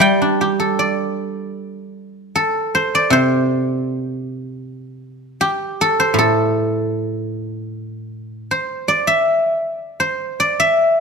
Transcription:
guzheng
Already playing: E3 C5 D5 E5
0.00 G3 G5
0.22 D4
0.41 G4
0.60 A4
0.79 D5
2.36 A4
2.75 C5
2.95 D5
3.10 C3 C5
5.41 G4
5.81 A4
6.00 C5
6.14 A2
6.19 A4
8.51 C5
8.88 D5
9.07 E5
10.00 C5
10.40 D5
10.60 E5

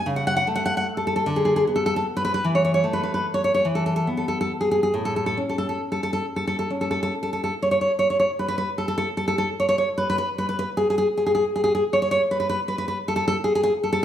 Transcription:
nylon-string guitar
0.06 C#3
0.16 F#5
0.27 F#5
0.37 F#5
0.47 A3
0.55 F#5
0.66 F#5
0.77 F#5
0.97 A4
1.07 A4
1.16 A4
1.26 D3
1.36 G#4
1.45 G#4
1.56 G#4
1.67 B3
1.76 A4
1.86 A4
1.96 A4
2.17 B4
2.25 B4
2.34 B4
2.44 E3
2.55 C#5
2.65 C#5
2.74 C#5
2.84 A3
2.93 B4
3.03 B4
3.14 B4
3.34 C#5
3.44 C#5
3.54 C#5
3.65 E3
3.75 A4
3.86 A4
3.96 A4
4.07 B3
4.17 A4
4.28 A4
4.41 A4
4.61 G#4
4.71 G#4
4.83 G#4
4.94 A2
5.05 A4
5.16 A4
5.26 A4
5.37 C#4
5.49 A4
5.58 A4
5.69 A4
5.92 A4
6.03 A4
6.13 A4
6.36 A4
6.47 A4
6.59 A4
6.70 C#4
6.81 A4
6.91 A4
7.03 A4
7.23 A4
7.33 A4
7.44 A4
7.62 C#5
7.71 C#5
7.81 C#5
7.99 C#5
8.10 C#5
8.20 C#5
8.39 B4
8.48 B4
8.58 B4
8.78 A4
8.88 A4
8.98 A4
9.17 A4
9.28 A4
9.38 A4
9.60 C#5
9.69 C#5
9.78 C#5
9.98 B4
10.10 B4
10.18 B4
10.38 B4
10.49 B4
10.59 B4
10.77 G#4
10.90 G#4
10.98 G#4
11.17 G#4
11.26 G#4
11.35 G#4
11.56 G#4
11.64 G#4
11.75 G#4
11.93 C#5
12.02 C#5
12.11 C#5
12.31 B4
12.40 B4
12.49 B4
12.68 B4
12.78 B4
12.88 B4
13.08 A4
13.16 A4
13.28 A4
13.44 G#4
13.55 G#4
13.63 G#4
13.84 A4
13.93 A4

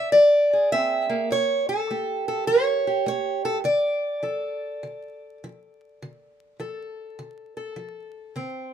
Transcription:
steel-string acoustic guitar
Already playing: E5
0.12 F3 D5
0.53 G#4
0.72 C4 E5
1.09 A#3
1.31 A2 C#5
1.69 A4
1.91 A3 G4
2.28 A4
2.47 E3 C#5
2.87 G4
3.06 A3 C#5
3.45 A4
3.64 D3 D5
4.23 F3 A4
4.83 D3
5.44 F3
6.02 D3
6.59 F3 A4
7.19 D3
7.57 A4
7.76 F3
8.36 D3 C4

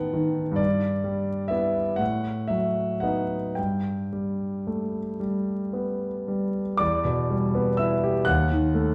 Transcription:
grand piano
Already playing: A2 D#3 E3 B3 F#5 G5
0.13 D#3
0.52 G2
0.56 D5
1.04 G3
1.48 B3 E4 E5
1.96 A2 F#5
2.48 F#3 E5
3.00 B3 D#4 F#5
3.55 G2 G5
4.13 G3
4.67 A3
5.20 G3
5.73 B3
6.28 G3
6.77 E2 D5 D6
7.05 B2
7.30 G3
7.55 B3
7.77 E4 E5 E6
8.03 G4
8.25 D#2 F#5 F#6
8.51 D#3
8.75 A3

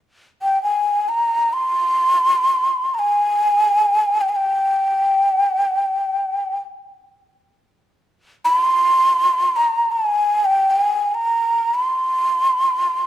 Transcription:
ney
0.42 G5
0.63 G#5
1.09 A#5
1.53 C6
2.94 A#5
2.99 G#5
4.21 G5
4.29 G#5
4.36 G5
8.45 B5
8.59 C6
9.56 A#5
9.92 G#5
10.45 G5
10.71 G5
10.82 G#5
11.15 A#5
11.74 C6

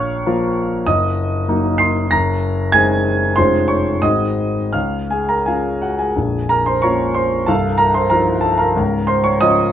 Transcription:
grand piano
Already playing: A#1 C#5 F5 C#6 F6
0.26 F3 A#3 F4
0.87 F#1 D#5 D#6
1.49 F#3 A#3 D#4
1.78 C6 C7
2.11 F#1 A#5 A#6
2.72 G#3 C4 D#4 G#5 G#6
3.36 F1 G#3 C#4 F4 C5 C6
3.68 C#5 C#6
4.02 G#1 G#3 C4 F#4 D#5 D#6
4.73 C#2 F5 F6
5.11 G#4 G#5
5.29 A#4 A#5
5.46 G#3 C#4 F4 G#4 F5 G#5
5.82 F#4 F#5
5.99 G#4 G#5
6.16 A#0 A#1
6.49 A#4 A#5
6.66 C5 C6
6.82 A#3 C#4 F4 C#5 A#5 C#6
7.14 C5 C6
7.46 C1 C2 A4 F5 A5
7.78 A#4 A#5
7.94 C5 C6
8.10 F3 D#4 F4 A#4 A#5
8.41 A4 A5
8.58 A#4 F5 A#5
8.76 C#1 C#2
9.07 C5 C6
9.24 C#5 C#6
9.41 F3 C#4 F4 D#5 D#6

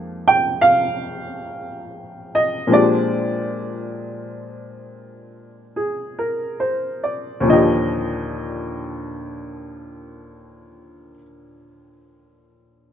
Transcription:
upright piano
Already playing: F2 F3 G#3 A#3 D#4 G4 F5
0.28 G5
0.61 F5
2.35 D#5
2.67 A#2 F3 G#3 C4
2.72 D4 G4 D5
5.76 G#4
6.19 A#4
6.60 C5
7.04 D5
7.40 D#2 A#2
7.46 D3 F3 D#5
7.52 G4

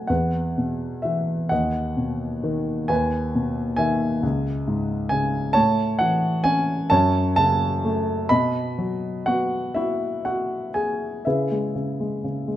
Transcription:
grand piano
Already playing: B2 F#3 A3 D#5 F#5 G#5
0.07 E2 B4 F#5
0.58 B2
1.02 E3 E5
1.49 D#2 D#5 F#5
1.97 B2
2.44 D#3
2.88 D#2 B4 G#5
3.35 B2
3.76 D#3 E5 G#5
4.23 C#2
4.68 G#2
5.09 C#3 G#5
5.53 A2 C#5 A5
5.99 E3 F#5
6.44 C#4 G#5
6.90 F#2 C#5 A5
7.36 C#3 A5
7.85 A3
8.29 B2 D#5 B5
8.78 F#3
9.26 B3 F#4 F#5
9.74 E4 F#4 E5
10.25 F#4 F#5
10.74 G#4 G#5
11.25 C#3 E4 G#4 B4 E5
11.52 G#3
11.75 C#3
12.00 G#3
12.24 C#3
12.48 G#3

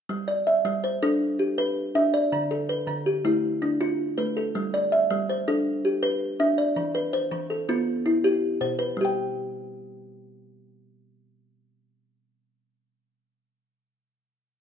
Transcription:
kalimba
0.09 G3
0.28 D5
0.47 E5
0.65 G3
0.84 C5
1.02 D4 A4
1.39 G4
1.58 B4
1.95 D4 E5
2.14 D5
2.32 D3
2.51 A4
2.69 B4
2.87 D3
3.06 G4
3.25 A3 E4
3.62 D4
3.81 F4
4.18 A3 B4
4.37 A4
4.55 G3
4.74 D5
4.92 E5
5.10 G3
5.30 C5
5.48 D4 A4
5.85 G4
6.03 B4
6.40 D4 E5
6.58 D5
6.76 E3
6.95 B4
7.13 C5
7.31 E3
7.50 A4
7.69 B3 F4
8.06 E4
8.24 G4
8.61 B2 C5
8.79 B4
8.97 G3
9.01 G4 G5

